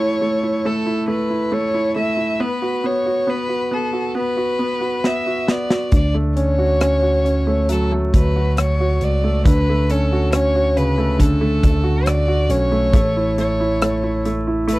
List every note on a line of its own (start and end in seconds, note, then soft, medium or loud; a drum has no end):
0.00 0.21 A3 medium
0.00 0.43 E4 soft
0.00 0.67 C#5 medium
0.21 0.64 A3 soft
0.43 0.85 E4 soft
0.65 1.06 A3 medium
0.65 1.09 A4 medium
0.86 1.29 E4 soft
1.08 1.50 A3 soft
1.08 1.54 B4 medium
1.30 1.73 E4 soft
1.52 1.94 A3 medium
1.52 1.96 C#5 medium
1.74 2.16 E4 soft
1.96 2.39 A3 soft
1.96 2.42 E5 medium
2.17 2.39 E4 soft
2.40 2.82 B3 medium
2.40 2.87 B4 medium
2.62 3.05 F#4 soft
2.84 3.25 B3 soft
2.84 3.31 C#5 medium
3.06 3.47 F#4 soft
3.27 3.70 B3 medium
3.27 3.75 B4 medium
3.49 3.91 F#4 soft
3.71 4.13 B3 soft
3.71 4.17 A4 medium
3.93 4.35 F#4 soft
4.15 4.58 B3 medium
4.15 5.08 B4 medium
4.37 4.79 F#4 soft
4.59 5.03 B3 soft
4.81 5.25 F#4 soft
5.04 5.46 B3 soft
5.04 5.52 E5 medium
5.04 snare soft
5.26 5.69 F#4 soft
5.47 5.91 B3 soft
5.47 5.94 D5 medium
5.47 snare medium
5.70 5.92 F#4 soft
5.70 snare medium
5.92 8.09 D2 medium
5.92 9.42 D4 medium
5.92 kick loud
5.92 closed hi-hat medium
5.96 6.15 D5 medium
6.14 7.45 A3 soft
6.36 6.80 C#4 soft
6.36 7.67 C#5 medium
6.36 closed hi-hat medium
6.58 7.01 F#4 soft
6.81 7.23 C#4 soft
6.81 cross-stick medium
6.81 closed hi-hat medium
7.03 8.34 F#4 soft
7.25 8.98 C#4 soft
7.25 closed hi-hat medium
7.47 7.90 A3 soft
7.69 11.15 F#3 medium
7.69 7.91 A4 medium
7.69 closed hi-hat medium
7.92 9.22 A3 soft
8.14 8.98 D2 medium
8.14 8.56 B4 medium
8.14 kick medium
8.14 closed hi-hat medium
8.36 8.79 F#4 soft
8.57 9.05 C#5 medium
8.57 cross-stick medium
8.57 closed hi-hat medium
8.80 10.11 F#4 soft
9.01 9.43 C#2 medium
9.01 9.47 D5 medium
9.01 closed hi-hat medium
9.24 9.68 A3 soft
9.45 11.59 D2 medium
9.45 11.17 D3 medium
9.45 9.92 B4 medium
9.45 kick loud
9.45 closed hi-hat medium
9.69 10.96 A3 soft
9.90 10.33 C#4 medium
9.90 10.33 A4 medium
9.90 closed hi-hat medium
10.12 10.54 F#4 soft
10.32 12.03 C#4 medium
10.32 10.78 C#5 medium
10.32 cross-stick medium
10.32 closed hi-hat medium
10.55 11.82 F#4 soft
10.77 12.46 C#3 soft
10.77 11.22 B4 medium
10.77 closed hi-hat medium
10.98 11.40 A3 soft
11.19 12.89 D3 medium
11.19 12.09 A4 medium
11.19 kick medium
11.19 closed hi-hat medium
11.41 12.70 A3 medium
11.63 12.46 D2 medium
11.63 kick medium
11.63 closed hi-hat medium
11.83 12.26 F#4 soft
12.06 12.52 D5 medium
12.06 cross-stick medium
12.06 closed hi-hat medium
12.28 12.91 F#4 medium
12.50 12.93 B1 medium
12.50 12.92 C#4 soft
12.50 13.38 C#5 medium
12.50 closed hi-hat medium
12.72 12.93 A3 soft
12.94 14.79 A1 medium
12.94 13.37 A3 medium
12.94 kick loud
12.94 closed hi-hat medium
13.17 13.59 E4 soft
13.38 13.81 A3 soft
13.38 14.21 C#5 medium
13.38 closed hi-hat medium
13.60 14.02 E4 medium
13.82 14.24 A3 medium
13.82 cross-stick medium
13.82 closed hi-hat medium
14.04 14.46 E4 soft
14.25 14.66 A3 soft
14.25 closed hi-hat medium
14.47 14.79 E4 soft
14.68 14.79 A3 medium
14.68 14.79 B4 medium
14.68 closed hi-hat medium